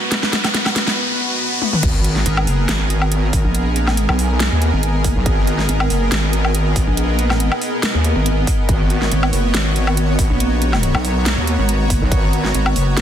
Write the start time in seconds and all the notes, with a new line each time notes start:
Already playing: B3 F#4 B4 D#5 A#5, riser
0.12 snare, closed hi-hat
0.23 snare
0.33 snare, closed hi-hat
0.44 snare, closed hi-hat, low woodblock
0.54 snare, closed hi-hat
0.66 snare, low woodblock
0.76 snare, open hi-hat
0.87 snare
1.62 high tom
1.73 mid tom
1.83 G#1 B3 G#4 A#4, kick, closed hi-hat, crash, sub drop
1.97 A#4
2.04 closed hi-hat
2.16 G#5, snare
2.21 D#5
2.26 G#1, closed hi-hat
2.37 low woodblock
2.47 F#1, open hi-hat
2.69 G#1, snare, closed hi-hat
2.90 closed hi-hat
3.02 low woodblock
3.12 closed hi-hat
3.33 G#1, kick, open hi-hat
3.44 A#1
3.55 closed hi-hat
3.76 closed hi-hat
3.87 A1, snare, low woodblock
3.97 closed hi-hat
4.09 B1, low woodblock
4.19 open hi-hat
4.40 snare, closed hi-hat
4.52 D#2
4.62 closed hi-hat
4.73 G#1
4.83 closed hi-hat
5.04 kick, open hi-hat
5.16 B1
5.26 G#1, kick, closed hi-hat
5.47 closed hi-hat
5.59 snare
5.69 G#1, closed hi-hat
5.80 low woodblock
5.90 F#1, open hi-hat
6.12 G#1, snare, closed hi-hat
6.33 closed hi-hat
6.45 low woodblock
6.55 closed hi-hat
6.76 G#1, kick, open hi-hat
6.87 A#1
6.97 closed hi-hat
7.19 closed hi-hat
7.30 A1, snare, low woodblock
7.40 closed hi-hat
7.52 low woodblock
7.62 open hi-hat
7.83 snare, closed hi-hat
7.95 D#2
8.04 closed hi-hat
8.16 G#1
8.26 closed hi-hat
8.47 kick, open hi-hat
8.69 G#1 F#4 C#5, kick, closed hi-hat
8.90 closed hi-hat
9.02 snare
9.12 G#1, closed hi-hat
9.23 A#5, low woodblock
9.33 F#1, open hi-hat
9.54 G#1, snare, closed hi-hat
9.76 closed hi-hat
9.87 low woodblock
9.97 closed hi-hat
10.19 G#1, kick, open hi-hat
10.30 A#1
10.40 closed hi-hat
10.62 closed hi-hat
10.73 snare, low woodblock
10.83 closed hi-hat
10.94 B1, low woodblock
11.05 open hi-hat
11.26 snare, closed hi-hat
11.37 D#2
11.47 closed hi-hat
11.59 G#1
11.69 closed hi-hat
11.90 kick, open hi-hat
12.02 B1
12.11 G#1, kick, closed hi-hat
12.33 closed hi-hat
12.45 snare
12.54 G#1, closed hi-hat
12.66 low woodblock
12.76 F#1, open hi-hat
12.97 G#1, snare, closed hi-hat